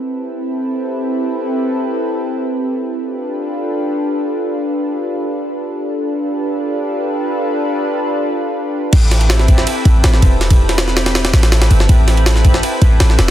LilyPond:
<<
  \new Staff \with { instrumentName = "Analog synth pad" } { \time 4/4 \key a \minor \tempo 4 = 162 <c' e' g' a' b'>1~ | <c' e' g' a' b'>1 | <d' f' g' a' b'>1~ | <d' f' g' a' b'>1 |
<d' f' g' a' b'>1~ | <d' f' g' a' b'>1 | <c' e' g' a' b'>2. <c' e' g' a' b'>8 <c' e' g' a' b'>8 | <c' e' g' a' b'>2~ <c' e' g' a' b'>8 <c' e' g' a' b'>16 <c' e' g' a' b'>4~ <c' e' g' a' b'>16 |
<c' e' g' a' b'>2. <c' e' g' a' b'>8 <c' e' g' a' b'>8 | }
  \new Staff \with { instrumentName = "808-style bass" } { \clef bass \time 4/4 \key a \minor r1 | r1 | r1 | r1 |
r1 | r1 | a,,2 r8 a,,8 a,,8 e,,8~ | e,,2~ e,,8 a,,4 g,,8 |
a,,2 r8 a,,8 a,,8 e,,8 | }
  \new DrumStaff \with { instrumentName = "Drums" } \drummode { \time 4/4 r4 r4 r4 r4 | r4 r4 r4 r4 | r4 r4 r4 r4 | r4 r4 r4 r4 |
r4 r4 r4 r4 | r4 r4 r4 r4 | <cymc bd cymr>8 <cymr sn>16 cymr16 <cymr sn>16 sn16 <bd cymr>16 sn16 cymr8 <bd cymr>8 <cymr sn>16 sn16 <bd cymr>8 | <cymr sn>16 <bd cymr>8 <cymr sn>16 <cymr sn>16 sn16 <cymr sn>16 <cymr sn>16 <cymr sn>16 <cymr sn>16 <cymr sn>16 <cymr sn>16 <cymr sn>16 <cymr sn>16 cymr16 sn16 |
<bd cymr>8 <cymr sn>16 cymr16 <cymr sn>16 sn16 <bd cymr>16 sn16 cymr8 <bd cymr>8 <cymr sn>16 sn16 <cymr sn>8 | }
>>